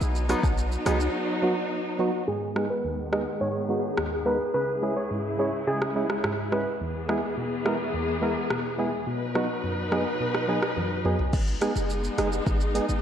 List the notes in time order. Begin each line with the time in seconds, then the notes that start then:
0.01 B1 F#3 B3 D#4, shaker
0.15 shaker
0.29 F#3 B3 D#4 F#4, cross-stick, closed hi-hat, cabasa, shaker
0.43 B1, kick, high woodblock, shaker
0.58 shaker
0.72 shaker
0.86 C#2 F#3 B3 D#4 G#4, cross-stick, closed hi-hat, cabasa, shaker
1.00 muted clean electric guitar stroke, shaker
1.42 F#3 B3 D#4 F#4
1.99 F#3 B3 D#4 F#4
2.28 G#2 D#3 B3 G#4
2.55 G#3 B3 D#4 G#4, cross-stick
2.70 B4
2.84 D#2
3.12 G#3 B3 D#4 G#4 D#5, cross-stick
3.41 G#2 C#5
3.69 G#3 B3 D#4 F#4
3.97 D#2, cross-stick
4.25 G#3 B3 D#4 A#4 B4
4.54 C#2 C#3 E4 B4
4.82 G#3 C#4 E4 G#4
4.97 C#5
5.11 G#2
5.39 G#3 C#4 E4 G#4 C#5
5.67 C#3 G#4
5.82 cross-stick
5.95 G#3 C#4 E4 G#4
6.10 cross-stick
6.24 G#2, cross-stick
6.52 G#3 C#4 E4 G#4 B4, cross-stick
6.81 E2 E3 B3 G#4
7.08 G#3 B3 E4 G#4, cross-stick
7.37 B2
7.65 G#3 B3 E4 A#4, cross-stick
7.94 E2
8.22 G#3 B3 E4 A#4
8.50 B2, cross-stick
8.78 G#3 B3 E4 G#4
9.07 B2 F#3 D#4 B4
9.35 F#3 B3 D#4 F#4, cross-stick
9.64 F#2
9.91 F#3 B3 D#4 G#4, cross-stick
10.20 B2
10.35 cross-stick
10.48 F#3 B3 D#4 G#4
10.63 cross-stick
10.77 F#2, high tom
11.04 F#3 B3 D#4 G#4, mid tom
11.19 floor tom
11.33 G#1 G#3 B3 D#4, kick, crash, shaker
11.47 shaker
11.61 G#3 B3 D#4 G#4, cross-stick, closed hi-hat, shaker
11.76 F#1, shaker
11.90 shaker
12.04 shaker
12.18 F#1 G#3 B3 D#4 G#4, cross-stick, closed hi-hat, shaker
12.32 shaker
12.47 G#1, kick, shaker
12.61 shaker
12.74 G#3 B3 D#4 G#4, closed hi-hat, shaker
12.89 G#1, shaker